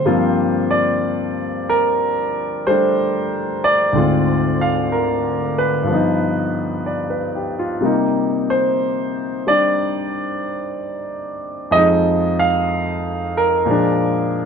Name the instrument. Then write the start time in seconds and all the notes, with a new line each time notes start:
grand piano
Already playing: C5
0.05 G2 F3 G3 A#3 C4 F4
0.71 D5
1.69 A#4
2.67 G3 A3 D4 C5
3.64 D5
3.93 D2 G#2 C4
3.97 F4
4.61 F5
4.92 A#4
5.58 B4
5.83 G2 F3
5.91 B3 D#4
6.86 D5
7.10 B4
7.35 G4
7.59 F4
7.81 C3 G3 A#3
7.86 D#4
8.50 C5
9.47 G3 D4 D5
11.71 F2 F3 G#3 D#5
11.76 D#4
12.39 F5
13.37 A#4
13.65 A#2 F3 G#3
13.71 D4